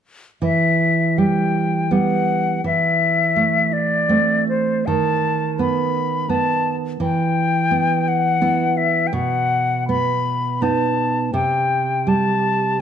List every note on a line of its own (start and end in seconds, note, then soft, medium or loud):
0.42 2.60 E3 soft
0.42 1.20 E5 soft
1.18 1.90 G3 soft
1.18 1.94 G5 soft
1.91 2.60 G3 soft
1.91 2.60 B3 soft
1.91 2.64 F#5 soft
2.64 4.83 E3 soft
2.64 3.74 E5 soft
3.36 4.08 A3 soft
3.73 4.48 D5 soft
4.09 4.83 A3 soft
4.09 4.83 C4 soft
4.49 4.88 C5 soft
4.86 6.96 D#3 soft
4.86 5.59 A5 soft
5.59 6.28 B3 soft
5.59 6.31 B5 soft
6.29 6.96 B3 soft
6.29 6.75 A5 medium
7.00 9.09 E3 soft
7.00 8.10 G5 medium
7.71 8.40 B3 soft
8.08 8.79 F#5 medium
8.41 9.09 B3 soft
8.41 9.09 E4 soft
8.77 9.09 E5 soft
9.07 9.15 G5 soft
9.13 11.29 B2 soft
9.13 9.88 F#5 medium
9.89 10.61 B3 soft
9.89 10.64 B5 medium
10.62 11.30 B3 soft
10.62 11.30 D#4 soft
10.62 11.34 A5 medium
11.34 12.81 C3 soft
11.34 12.10 G5 medium
12.07 12.79 G3 soft
12.07 12.81 A5 medium